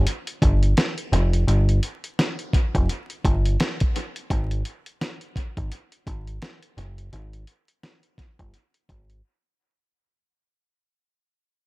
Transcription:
0.07 closed hi-hat
0.27 closed hi-hat
0.42 picked electric bass G1, kick, closed hi-hat
0.63 closed hi-hat
0.77 snare, closed hi-hat
0.98 closed hi-hat
1.12 picked electric bass F1, closed hi-hat
1.33 closed hi-hat
1.47 picked electric bass G1, closed hi-hat
1.69 closed hi-hat
1.83 closed hi-hat
2.04 closed hi-hat
2.19 snare, closed hi-hat
2.39 closed hi-hat
2.53 kick, closed hi-hat
2.75 picked electric bass F1, kick, closed hi-hat
2.89 closed hi-hat
3.10 closed hi-hat
3.25 picked electric bass G1, kick, closed hi-hat
3.45 closed hi-hat
3.60 snare, closed hi-hat
3.80 kick, closed hi-hat
3.96 closed hi-hat
4.16 closed hi-hat
4.30 picked electric bass G#1, kick, closed hi-hat
4.51 closed hi-hat
4.65 closed hi-hat
4.86 closed hi-hat
5.01 snare, closed hi-hat
5.21 closed hi-hat
5.36 kick, closed hi-hat
5.57 picked electric bass G#1, kick, closed hi-hat
5.72 closed hi-hat
5.92 closed hi-hat
6.07 picked electric bass G#1, kick, closed hi-hat
6.27 closed hi-hat
6.42 snare, closed hi-hat
6.63 closed hi-hat
6.77 picked electric bass F#1, closed hi-hat
6.98 closed hi-hat
7.13 picked electric bass G#1, closed hi-hat
7.33 closed hi-hat
7.47 closed hi-hat
7.68 closed hi-hat
7.83 snare, closed hi-hat
8.03 closed hi-hat
8.18 kick, snare, closed hi-hat
8.39 picked electric bass G1, kick, closed hi-hat
8.54 closed hi-hat
8.74 closed hi-hat
8.89 picked electric bass G#1, kick, closed hi-hat
9.10 closed hi-hat

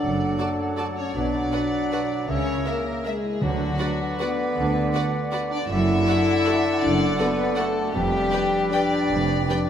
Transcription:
Already playing: bassoon F#3, harp A3 D4 F#4 A4 D5 F#5, french horn section D4, clarinet A4, violin section D5, cor anglais D5, flute F#5
0.01 double bass section F#1, cello section F#2, harp F#2
0.10 harp F#3
0.20 harp A3
0.29 harp D4
0.38 viola section F#4 A4, harp F#4, violin section D5 A5
0.49 harp A4
0.59 harp D5
0.69 harp F#5
0.78 viola section F#4 A4, violin section D5 A5, harp D5
0.89 harp A4
0.97 french horn section C#4, harp F#4, violin section C#5
1.06 harp D4
1.14 double bass section B1, cello section B2, harp B2, bassoon F#3, french horn section D4, clarinet B4, violin section D5, cor anglais D5, flute F#5
1.25 harp F#3
1.34 harp B3
1.53 viola section F#4 B4, harp F#4, violin section D5 F#5
1.64 harp B4
1.74 harp D5
1.83 harp F#5
1.92 viola section F#4 B4, violin section D5 F#5
2.03 harp B4
2.12 harp F#4
2.20 harp D4
2.28 double bass section C#2, bassoon C#3, cello section C#3, harp C#3, french horn section C#4, clarinet A#4, violin section C#5, flute E5, cor anglais E5
2.38 harp C#4
2.47 harp A#3
2.57 harp E4
2.65 french horn section A#3, violin section A#4 E5, viola section A#4, harp A#4
2.76 harp E4
2.86 harp E5
2.96 harp A#5
3.04 french horn section G#3, violin section G#4 E5, viola section A#4, harp E5
3.15 harp A#4
3.25 harp E4
3.33 harp A#3
3.40 double bass section D2, timpani D3, cello section D3, bassoon D3, harp D3, french horn section F#3, violin section F#4, clarinet B4, cor anglais D5, flute F#5
3.51 harp B3
3.61 harp D4
3.70 harp F#4
3.79 viola section F#4 B4, harp B4, violin section D5 F#5
3.90 harp D5
4.00 harp F#5
4.11 harp B5
4.19 french horn section B3, viola section F#4 B4, violin section B4 D5 F#5, harp F#5
4.30 harp D5
4.39 harp B4
4.48 harp F#4
4.57 double bass section D2, cello section D3, harp D3
4.76 harp D4
4.85 harp F#4
4.93 viola section F#4 B4, harp B4, violin section D5 F#5
5.04 harp D5
5.14 harp F#5
5.24 harp B5
5.32 viola section F#4 B4, violin section D5 F#5, harp F#5
5.43 harp D5
5.51 french horn section D4, harp B4, violin section D5
5.61 harp F#4
5.68 double bass section F#1, harp F#2, cello section F#2, bassoon D3, french horn section E4, clarinet A4, cor anglais D5, violin section E5, flute F#5
5.78 harp F#3
5.88 harp D4
5.97 harp F#4
6.07 viola section F#4 A4, harp A4, violin section D5 F#5
6.17 harp D5
6.27 harp F#5
6.37 harp A5
6.45 viola section F#4 A4, violin section D5 F#5, harp F#5
6.57 harp D5
6.66 harp A4
6.75 harp F#4
6.82 double bass section F#1, cello section F#2, harp F#2, french horn section D4, violin section D5
6.92 harp F#3
7.02 harp D4
7.10 harp F#4
7.19 french horn section B3, viola section F#4 A4, harp A4, violin section B4 D5 F#5
7.30 harp D5
7.38 harp F#5
7.48 harp A5
7.57 french horn section A3, viola section F#4 A4, violin section A4 D5 F#5, harp F#5
7.67 harp D5
7.76 harp A4
7.85 harp F#4
7.93 double bass section F1, cello section F2, harp F2, french horn section G3, bassoon G3, violin section G4, clarinet B4, cor anglais D5, flute G5
8.04 harp F3
8.13 harp D4
8.32 viola section G4 B4, harp B4, violin section D5 G5
8.42 harp D5
8.52 harp G5
8.63 harp B5
8.71 french horn section D4, viola section G4 B4, violin section D5 G5, harp G5
8.83 harp D5
8.92 harp B4
9.02 harp G4
9.10 double bass section F1, harp F2, cello section F2
9.20 harp F3
9.30 harp D4
9.39 harp G4
9.49 viola section G4 B4, harp B4, violin section D5 G5
9.60 harp D5

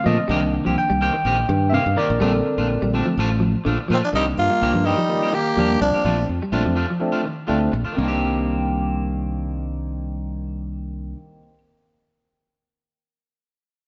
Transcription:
Already playing: tine electric piano D3 A3 C4
0.04 fingered electric bass A#2, clean electric guitar F3 A3 D4 F4, tine electric piano D#5
0.20 muted clean electric guitar stroke
0.28 fingered electric bass C2, tine electric piano D#3 A#3 D4, clean electric guitar D#3 G3 A#3 C4 G4
0.43 muted clean electric guitar stroke
0.53 muted clean electric guitar stroke
0.65 fingered electric bass C2, clean electric guitar F3 A#3 C4 G4
0.78 tine electric piano G5
0.90 fingered electric bass C2, clean electric guitar G3
1.01 clean electric guitar D#3 A#3 C4 G4, tine electric piano G5
1.14 clean electric guitar D#3, muted clean electric guitar stroke
1.25 fingered electric bass A#1, clean electric guitar D#3 C4 G4, muted clean electric guitar stroke
1.40 muted clean electric guitar stroke
1.49 fingered electric bass G2, clean electric guitar D#3, muted clean electric guitar stroke
1.70 clean electric guitar C3 D#3, tine electric piano E5
1.74 clean electric guitar A#3 C4 G4, tine electric piano F5
1.86 fingered electric bass G2, muted clean electric guitar stroke
1.96 clean electric guitar D#3 A#3 C4 G4, tine electric piano A#4 D5
2.10 fingered electric bass A#1, muted clean electric guitar stroke
2.20 fingered electric bass A#1, tine electric piano D3 C4 A4, clean electric guitar G3 A3 D4 F4, muted clean electric guitar stroke
2.34 muted clean electric guitar stroke
2.46 muted clean electric guitar stroke
2.58 fingered electric bass A#1, clean electric guitar A3 D4 F4
2.70 muted clean electric guitar stroke
2.82 fingered electric bass A#1, clean electric guitar G3
2.93 tine electric piano D3 A3 C4, clean electric guitar F3 A3 D4
3.06 clean electric guitar F3, muted clean electric guitar stroke
3.18 fingered electric bass A1, clean electric guitar F3 A3 D4 F4
3.32 muted clean electric guitar stroke
3.40 clean electric guitar F3, muted clean electric guitar stroke
3.65 fingered electric bass A#1, clean electric guitar D3 F3 A3 D4 F4
3.80 muted clean electric guitar stroke
3.88 fingered electric bass A#2, trombone D#3, clean electric guitar F3 A3 D4 F4
3.93 tenor saxophone C4
4.04 trombone F3, tenor saxophone D4, muted clean electric guitar stroke
4.13 fingered electric bass C2, clean electric guitar D#3 A#3 C4 G4, tine electric piano D#3 G3 A#3 D4, trombone G3, tenor saxophone D#4
4.28 muted clean electric guitar stroke
4.38 fingered electric bass G2, trombone A#3, tenor saxophone F4
4.50 clean electric guitar G3, muted clean electric guitar stroke
4.60 fingered electric bass C2, tine electric piano D#3 G3 A#3 D4, clean electric guitar D#3 A#3 C4 G4
4.74 fingered electric bass G2, clean electric guitar F3, muted clean electric guitar stroke
4.85 clean electric guitar D#3 A#3 C4 G4, trombone G3, tenor saxophone D#4
4.98 clean electric guitar F3, muted clean electric guitar stroke
5.09 tine electric piano D#3 G3 A#3 F4, muted clean electric guitar stroke
5.23 clean electric guitar D#3 A#3 C4 G4
5.33 clean electric guitar D#3, trombone A#3, tenor saxophone G4, muted clean electric guitar stroke
5.56 fingered electric bass D#2, tine electric piano D#3 G3 A#3 D4, clean electric guitar D#3 F3 A#3 C4 G4
5.71 muted clean electric guitar stroke
5.81 fingered electric bass C2, trombone F3, clean electric guitar G3, tenor saxophone D4, muted clean electric guitar stroke
5.94 clean electric guitar A#3 C4 G4, muted fingered electric bass stroke
6.04 fingered electric bass A#1, tine electric piano F3 A3 C4 D4, clean electric guitar F3 A3 D4 F4
6.19 muted clean electric guitar stroke
6.29 fingered electric bass F2
6.42 clean electric guitar G3, muted clean electric guitar stroke
6.52 fingered electric bass A#1, tine electric piano F3 A3 C4 D4, clean electric guitar F3 A3 D4 F4
6.65 fingered electric bass F2, clean electric guitar F3, muted clean electric guitar stroke
6.75 clean electric guitar F3 A3 D4 F4
6.89 clean electric guitar F3, muted clean electric guitar stroke
7.00 tine electric piano F3 A3 C4 D4, muted clean electric guitar stroke
7.12 clean electric guitar F3 A3 D4 F4
7.23 clean electric guitar D#3, muted clean electric guitar stroke
7.47 fingered electric bass D2, clean electric guitar F3 A3 D4 F4, tine electric piano F3 A3 C4 D4, muted clean electric guitar stroke
7.61 muted clean electric guitar stroke
7.72 fingered electric bass A#1, muted clean electric guitar stroke
7.85 clean electric guitar A3 D4 F4, muted fingered electric bass stroke
7.92 clean electric guitar D#3, tine electric piano D#3
7.97 fingered electric bass C2, clean electric guitar C3 A#3, tine electric piano G3 A#3
8.02 clean electric guitar C4, tine electric piano D4
8.08 clean electric guitar G4

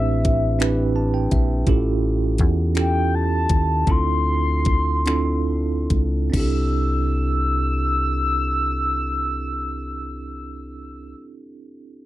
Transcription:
Already playing: fingered electric bass A1, tine electric piano C4 D4 E4 G4 B4, soft synth lead E5
0.25 kick, closed hi-hat
0.59 tine electric piano C4 D4 E4 G4 B4, finger snap, closed hi-hat
0.96 tine electric piano A5
1.14 tine electric piano G5
1.31 fingered electric bass A#1, tine electric piano E5, kick, closed hi-hat
1.67 fingered electric bass A1, tine electric piano C#4 E4 F4 G4 A4, kick, closed hi-hat
2.38 fingered electric bass E2, kick, closed hi-hat
2.75 tine electric piano C#4 E4 F4 G4 A4, finger snap, closed hi-hat
2.79 soft synth lead G5
3.15 soft synth lead A5
3.49 fingered electric bass D#2, kick, closed hi-hat
3.87 fingered electric bass D2, tine electric piano C4 D4 E4 F4 A4, kick, closed hi-hat
3.91 soft synth lead C6
4.65 kick, closed hi-hat
5.06 tine electric piano C4 D4 E4 F4 A4, finger snap, closed hi-hat
5.90 fingered electric bass C#2, kick, closed hi-hat
6.30 tine electric piano C4 D4, kick, crash
6.35 fingered electric bass C2, tine electric piano E4 G4, soft synth lead E6
6.40 tine electric piano A4

